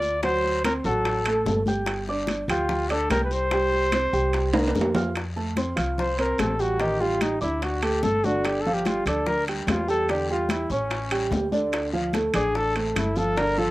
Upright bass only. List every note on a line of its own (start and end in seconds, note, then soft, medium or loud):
0.00 0.79 D2 medium
0.84 1.42 A1 medium
1.46 2.43 G1 medium
2.48 3.06 D2 medium
3.10 4.07 C2 medium
4.13 4.71 C2 loud
4.75 5.72 F2 medium
5.77 6.35 C2 medium
6.39 7.36 A1 medium
7.42 8.00 D2 medium
8.03 9.00 G1 medium
9.06 9.64 D2 medium
9.67 10.64 E2 loud
10.70 11.28 A1 medium
11.31 12.28 D2 medium
12.34 12.92 A1 medium
12.96 13.71 G1 medium